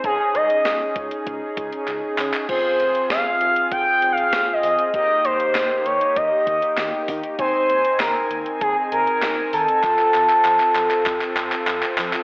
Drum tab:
CC |----------------|x---------------|----------------|----------------|
HH |x-xxx-xxx-xxx-ox|--xxx-xxx-xxx-ox|x-xxx-xxx-xxx-ox|x-xxx-xxx-xxx-ox|
CP |------------x-xx|----------------|----x-------x---|----x-------x---|
SD |----o-----------|----o-------o---|----o-------o---|----o-------o---|
BD |o-----o-o-o-----|o-------o-------|o-------o-o---o-|o-------o-------|

CC |----------------|
HH |x-xxx-xxx-xxx-ox|
CP |xxxxxxxxxxxxxxxx|
SD |----------------|
BD |o-------o-------|